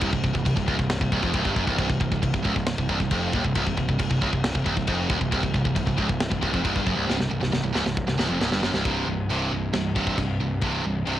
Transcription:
0.01 C1 C2, kick, crash
0.13 C1 C2, kick
0.23 C1 C2, kick
0.35 C1 C2, kick
0.46 C1 C2, kick, crash
0.57 C1 C2, kick
0.67 C#1 C#2, kick
0.79 C1 C2, kick
0.90 snare, crash
1.01 C1 C2, kick
1.12 C1 C2, kick
1.22 F1 F2, kick
1.34 C1 C2, kick, crash
1.45 G1 G2, kick
1.56 F#1 F#2, kick
1.67 C1 C2, kick
1.78 C1 C2, kick, crash
1.90 C1 C2, kick
2.01 C1 C2, kick
2.12 C1 C2, kick
2.22 C1 C2, kick, crash
2.33 C1 C2, kick
2.45 C#1 C#2, kick
2.56 C1 C2, kick
2.67 snare, crash
2.78 C1 C2, kick
2.89 C1 C2, kick
3.00 C1 C2, kick
3.11 F1 F2, kick, crash
3.33 D#1 D#2, kick
3.44 C1 C2, kick
3.55 C1 C2, kick, crash
3.67 C1 C2, kick
3.77 C1 C2, kick
3.89 C1 C2, kick
3.99 C1 C2, kick, crash
4.10 C1 C2, kick
4.22 C#1 C#2, kick
4.32 C1 C2, kick
4.44 snare, crash
4.54 C1 C2, kick
4.65 C1 C2, kick
4.77 C1 C2, kick
4.87 F1 F2, kick, crash
5.10 D#1 D#2, kick
5.21 C1 C2, kick
5.31 C1 C2, kick, crash
5.42 C1 C2, kick
5.53 C1 C2, kick
5.64 C1 C2, kick
5.75 C1 C2, kick, crash
5.86 C1 C2, kick
5.97 C#1 C#2, kick
6.08 C1 C2, kick
6.20 snare, crash
6.30 C1 C2, kick
6.41 C1 C2, kick
6.52 F1 F2, kick
6.63 C1 C2, kick, crash
6.74 G1 G2, kick
6.85 F#1 F#2, kick
6.96 C1 C2
7.07 C1 C2, snare
7.18 C1 C2, snare
7.29 C1 C2
7.40 C1 C2, snare
7.52 C1 C2, snare
7.63 C1 C2
7.73 C#1 C#2, snare
7.85 C1 C2, snare
7.97 kick
8.06 C1 C2, snare
8.18 C1 C2, snare
8.29 F1 F2
8.40 C1 C2, snare
8.51 G1 G2, snare
8.62 F#1 F#2, snare
8.73 C1 C2, snare
8.85 C1 C2 G2 C3, kick, china
9.06 C1 C2 G2
9.28 C1 C2 G2 C3, china
9.51 C1 C2 G2
9.73 C1 C2 G2, snare, china
9.95 C1 C2 G2 C3, kick
10.07 kick
10.17 C1 C2 G2, kick, china
10.40 C1 C2 G2
10.61 C1 C2 G2 C3, kick, china
10.83 C1 C2 G2
11.05 C1 C2 G2 C3, china

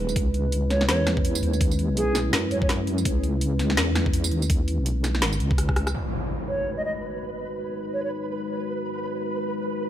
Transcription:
Already playing: G#3 D#4 G#4 B4
0.00 D#1
0.09 tambourine
0.16 C#2 C#4 E4, kick, closed hi-hat
0.34 closed hi-hat
0.52 closed hi-hat
0.70 C#5, snare, closed hi-hat
0.81 snare
0.88 E2 C#5, snare, closed hi-hat
1.07 snare, closed hi-hat
1.17 kick
1.25 closed hi-hat
1.35 tambourine
1.43 D#2, closed hi-hat
1.53 tambourine
1.61 kick, closed hi-hat
1.71 tambourine
1.79 closed hi-hat
1.90 B1
1.97 G#4, closed hi-hat
2.15 snare, closed hi-hat, tambourine
2.33 F#2, snare, closed hi-hat
2.51 C#5, closed hi-hat
2.62 C#5, kick
2.69 snare, closed hi-hat
2.87 closed hi-hat
2.98 tambourine
3.05 C#2, kick, closed hi-hat
3.24 closed hi-hat
3.41 closed hi-hat
3.59 snare, closed hi-hat
3.70 snare
3.77 E2, snare, closed hi-hat
3.96 snare, closed hi-hat
4.06 kick
4.13 closed hi-hat
4.24 tambourine
4.31 D#2, closed hi-hat
4.42 tambourine
4.50 kick, closed hi-hat
4.68 closed hi-hat
4.78 B1
4.86 closed hi-hat
5.04 snare, closed hi-hat, tambourine
5.15 snare
5.22 G#1, snare, closed hi-hat
5.33 tambourine
5.40 C#2, closed hi-hat
5.51 kick
5.58 cross-stick, closed hi-hat
5.69 kick, cross-stick
5.76 cross-stick, closed hi-hat
5.87 cross-stick, tambourine
5.94 G#3 D#4 F#4 B4, impact
6.49 C#5
6.77 D#5
6.85 D#5
7.93 C#5
8.04 C#5

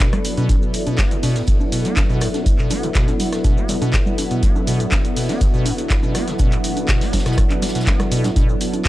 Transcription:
Already playing: F#3 B3 D4 E4 A4 B4 D5
0.00 B2, kick, snare, clap, closed hi-hat, high conga, shaker
0.13 B3, cross-stick, closed hi-hat, low conga, shaker
0.25 open hi-hat, shaker
0.37 B2, closed hi-hat, high conga, shaker
0.49 A2 E4, kick, closed hi-hat, high conga, shaker
0.62 shaker
0.71 F#5, open hi-hat, shaker
0.87 B2, closed hi-hat, high conga, shaker
0.98 B3, kick, snare, clap, closed hi-hat, shaker
1.11 B2, closed hi-hat, shaker
1.23 B2, open hi-hat, high conga, shaker
1.36 A2, snare, closed hi-hat, shaker
1.47 kick, closed hi-hat, shaker
1.60 high conga, shaker
1.72 B2, open hi-hat, shaker
1.85 B3, closed hi-hat, shaker
1.97 B2, kick, snare, clap, closed hi-hat, high conga, shaker
2.10 B2, shaker
2.21 A2, cross-stick, open hi-hat, shaker
2.34 snare, closed hi-hat, high conga, shaker
2.46 kick, closed hi-hat, shaker
2.58 B2, clap, shaker
2.70 B3, open hi-hat, high conga, shaker
2.83 B2, closed hi-hat, shaker
2.95 B2, kick, snare, clap, closed hi-hat, shaker
3.07 A2, snare, closed hi-hat, high conga, shaker
3.20 open hi-hat, low conga, shaker
3.33 cross-stick, snare, closed hi-hat, shaker
3.44 B2, kick, closed hi-hat, high conga, shaker
3.57 B3, shaker
3.69 B2, open hi-hat, low conga, shaker
3.82 B2, closed hi-hat, high conga, shaker
3.93 A2, kick, snare, clap, closed hi-hat, shaker
4.06 low conga, shaker
4.18 open hi-hat, high conga, shaker
4.31 B2, closed hi-hat, shaker
4.43 B3, kick, closed hi-hat, shaker
4.55 B2, high conga, shaker
4.67 B2, open hi-hat, shaker
4.80 A2, closed hi-hat, shaker
4.92 kick, snare, clap, closed hi-hat, high conga, shaker
5.05 closed hi-hat, shaker
5.16 B2, open hi-hat, shaker
5.28 B3, snare, closed hi-hat, high conga, shaker
5.41 B2, kick, closed hi-hat, shaker
5.54 B2, shaker
5.66 A2, open hi-hat, high conga, shaker
5.78 closed hi-hat, shaker
5.90 kick, snare, clap, closed hi-hat, shaker
6.03 B2, high conga, shaker
6.15 B3, cross-stick, open hi-hat, shaker
6.27 B2, snare, closed hi-hat, shaker
6.39 B2, kick, closed hi-hat, high conga, shaker
6.52 A2, clap, closed hi-hat, shaker
6.64 open hi-hat, shaker
6.77 closed hi-hat, high conga, shaker
6.88 B2, kick, snare, clap, closed hi-hat, shaker
7.01 B3, snare, open hi-hat, shaker
7.13 B2, kick, snare, open hi-hat, high conga, low conga, shaker
7.19 snare, shaker
7.26 B2, cross-stick, snare, closed hi-hat, shaker
7.32 snare, shaker
7.38 A2, kick, cross-stick, closed hi-hat, shaker
7.50 clap, closed hi-hat, high conga, shaker
7.62 snare, open hi-hat, low conga, shaker
7.69 snare, shaker
7.75 B2, snare, closed hi-hat, shaker
7.81 snare, shaker
7.87 B3, kick, snare, clap, closed hi-hat, high conga, shaker
7.99 B2, cross-stick, snare, closed hi-hat, low conga, shaker
8.12 B2, open hi-hat, shaker
8.24 A2, snare, closed hi-hat, high conga, low conga, shaker
8.36 B2 A4, kick, closed hi-hat, high conga, shaker
8.49 A2, shaker
8.58 D5, open hi-hat, shaker
8.74 closed hi-hat, high conga, shaker
8.85 clap

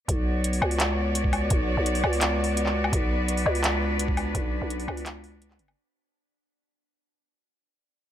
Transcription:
0.08 B1 B3 F#4 C#5 D5, kick, closed hi-hat
0.44 closed hi-hat
0.53 open hi-hat
0.62 C#2, low woodblock
0.71 open hi-hat
0.80 clap, closed hi-hat
1.15 closed hi-hat
1.24 kick
1.33 open hi-hat, low woodblock
1.50 B1, kick, closed hi-hat
1.77 B1
1.86 closed hi-hat
1.95 open hi-hat
2.04 C#2, low woodblock
2.13 open hi-hat
2.21 clap, closed hi-hat
2.44 open hi-hat
2.57 closed hi-hat
2.66 clap
2.84 low woodblock
2.93 B1 D4 B4, kick, closed hi-hat
3.28 closed hi-hat
3.37 open hi-hat
3.46 C#2, low woodblock
3.55 open hi-hat
3.64 clap, closed hi-hat
3.99 closed hi-hat
4.08 kick
4.17 open hi-hat, low woodblock
4.35 B1, kick, closed hi-hat
4.62 B1
4.70 closed hi-hat
4.80 open hi-hat
4.88 C#2, low woodblock
4.97 open hi-hat
5.06 clap, closed hi-hat
5.24 open hi-hat
5.42 closed hi-hat
5.51 clap
5.59 F#1, closed hi-hat
5.68 low woodblock

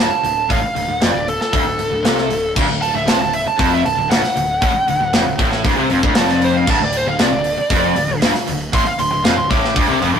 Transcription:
0.00 D1 A5
0.10 muted distorted electric guitar stroke, muted overdriven electric guitar stroke, muted picked electric bass stroke
0.23 D1 D2, open hi-hat
0.49 A1 A2 F5, kick, open hi-hat
0.62 muted distorted electric guitar stroke, muted overdriven electric guitar stroke, muted picked electric bass stroke
0.75 D1 D2, open hi-hat
0.88 D1 D2
1.01 F1 F2 D5, snare, open hi-hat
1.13 D1 D2
1.28 A4, open hi-hat
1.41 A4, snare
1.53 D1 D2 A4, kick, open hi-hat
1.66 D1 D2
1.78 D1 D2, open hi-hat
1.91 D1 D2
2.03 C2 C3, snare, open hi-hat
2.18 snare
2.29 D1 D2, open hi-hat
2.56 D1 D2, kick, crash
2.69 D1 D2
2.82 A5, open hi-hat
2.94 D1 D2 E5
3.07 C2 C3 A5, snare, open hi-hat
3.20 D1 D2 A5
3.33 E5, open hi-hat
3.46 A5, muted overdriven electric guitar stroke, muted distorted electric guitar stroke, muted picked electric bass stroke
3.58 F1 F2 A5, kick, open hi-hat
3.73 E5
3.85 D1 D2 A5, open hi-hat
3.97 D1 D2
4.10 D1 D2 F#5, snare, open hi-hat
4.23 muted overdriven electric guitar stroke, muted distorted electric guitar stroke, muted picked electric bass stroke, snare
4.36 D1 D2, open hi-hat
4.62 A1 A2, kick, open hi-hat
4.74 muted overdriven electric guitar stroke, muted distorted electric guitar stroke, muted picked electric bass stroke
4.88 D1 D2, open hi-hat
5.00 D1 D2
5.13 F1 F2, snare, open hi-hat
5.26 D1 D2
5.39 A1 A2, kick, open hi-hat
5.52 snare
5.64 D1 D2, kick, open hi-hat
5.77 C2 C3
5.90 F1 F2, open hi-hat
6.03 D1 D2, kick
6.15 F1 F2 A5, snare, open hi-hat
6.29 D5, snare
6.42 C5, open hi-hat
6.57 F5
6.67 D1 D2 A5, kick, crash
6.81 D1 D2 D5
6.93 open hi-hat
6.97 C5
7.07 D1 D2 F5
7.19 C2 C3 D5, snare, open hi-hat
7.32 D1 D2
7.44 open hi-hat
7.57 muted distorted electric guitar stroke, muted picked electric bass stroke, muted overdriven electric guitar stroke
7.70 F1 F2, kick, open hi-hat
7.96 D1 D2, open hi-hat
8.10 D1 D2
8.22 D1 D2, snare, open hi-hat
8.34 muted distorted electric guitar stroke, muted picked electric bass stroke, muted overdriven electric guitar stroke, snare
8.48 D1 D2, open hi-hat
8.73 A1 A2 C6, kick, open hi-hat
8.85 F5, muted distorted electric guitar stroke, muted overdriven electric guitar stroke, muted picked electric bass stroke
8.99 D1 D2 C6, open hi-hat
9.11 D1 D2 C6
9.24 F1 F2 F5, snare, open hi-hat
9.37 D1 D2 C6
9.49 A1 A2 D6, kick, open hi-hat
9.65 snare
9.75 D1 D2, kick, open hi-hat
9.89 C2 C3
10.01 F1 F2, open hi-hat
10.13 D1 D2

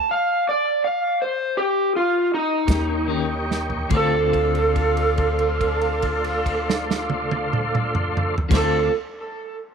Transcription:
0.11 F5
0.49 D5
0.84 F5
1.22 C5
1.57 G4
1.96 F4
2.34 D#4
2.66 D#2 A#3 C#4 D#4 G4 C#5 D#5 G5, kick, closed hi-hat
2.70 A#3, snare
3.07 D#3 A#3 C#4 G4
3.51 snare
3.70 floor tom
3.90 D2 D3 A3 D4 F4 C5 D5 F5, kick, crash
3.94 C4 F4 A4
4.33 kick, crash
4.55 crash
4.76 kick, crash
4.97 crash
5.18 kick, crash
5.39 crash
5.61 kick, crash
5.81 crash
6.02 kick, crash
6.24 crash
6.46 kick, crash
6.70 snare
6.91 snare
7.10 high tom
7.31 high tom
7.53 mid tom
7.75 mid tom
7.95 mid tom
8.17 mid tom
8.38 floor tom
8.49 D2 D3 A3 D4 F4 C5 D5 F5, kick, crash
8.53 C4 F4 A4, snare

